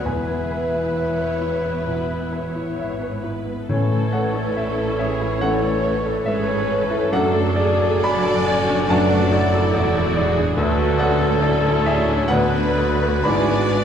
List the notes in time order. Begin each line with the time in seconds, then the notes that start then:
0.04 E1 E2 E3 B3 E4 G#4 B4 E5 G#5
0.30 B3
0.52 B4
0.75 E4
0.96 C#5 E5
1.18 B4
1.42 E4
1.65 B3
1.86 B2 B3 E4 B4
2.10 B3
2.31 B4 C#5
2.55 E4
2.79 G#1 G#2 E5
3.02 B4
3.23 E4 B4
3.48 B3
3.67 A1 A2 E3 A3 C#4 E4 A4 C#5
3.92 A3
4.12 A4 B4 C#5 D5 F#5
4.35 A4
4.56 A4 E5
4.78 A4
4.98 G#4 C#5 E5
5.21 E4
5.41 E3 A3 C#4 A4 D5 F#5
5.63 A3
5.83 B4 C#5
6.06 A4
6.25 G#1 G#2 E3 C#4 G#4 A4 B4 C#5 E5
6.47 A4
6.68 A4 B4 C#5
6.90 E4
7.12 F#1 F#2 F#3 A3 D4 A4 D5 F#5
7.34 A3
7.56 G#4 D5
7.80 A4
8.02 D4 F#4 A4 D5 G#5 B5
8.25 A4
8.47 C#4 D5
8.68 D4
8.86 F#2 F#3 A3 D4 A4 B4 D5 A5
8.90 D4 D5 F#5
9.11 A3
9.32 E4 A4 D5
9.53 A4
9.72 E1 E2 F#4 A4 D5
9.95 A4
10.15 G#4 D5
10.38 D4
10.56 D2 F#3 A3 D4 F#4 A4 B4
10.79 A3
10.98 C#4 A4 D5 F#5
11.21 A4
11.42 E4 A4 D5
11.63 A4
11.84 G#4 C#5 D5 E5
12.09 D4
12.28 D2 F#3 B3 D4 B4 F#5
12.33 D5
12.54 B3
12.78 F#4 A4 D5
13.03 B4
13.23 G#1 G#2 E3 D4 E4 G#4 B4 D5 G#5 B5
13.50 B3
13.70 B4 D5